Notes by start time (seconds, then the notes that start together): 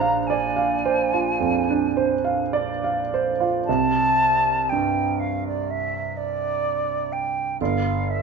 Already playing: A#1 D4 C5 A#5
0.01 F5
0.27 D5 G#5
0.56 F5
0.85 C5
1.13 F4
1.40 F2
1.70 D4
1.97 C5
2.25 F5
2.53 D5
2.84 F5
3.14 C5
3.40 F4
3.66 C2 A5
4.69 G2 G5
5.20 F5
5.47 D5
5.70 E5
6.17 D5
7.12 G5
7.61 G1 F5
8.10 E5